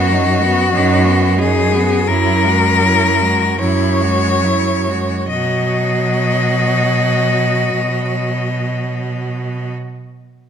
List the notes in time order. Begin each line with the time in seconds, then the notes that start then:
Already playing: F#2 B3 F#4
0.11 F#3 D#4
0.41 B3 F#4
0.73 F#2 F#3 D#4
1.06 B3 F#4
1.38 F#3 D#4 G#4
1.73 B3 F#4
2.08 F#2 F#3 E4 A#4
2.45 G#3 F#4
2.82 F#3 E4
3.20 G#3 F#4
3.58 F#2 F#3 E4 C#5
4.00 G#3 F#4
4.42 F#3 E4
4.86 G#3 F#4
5.28 B2 F#3 F#4 D#5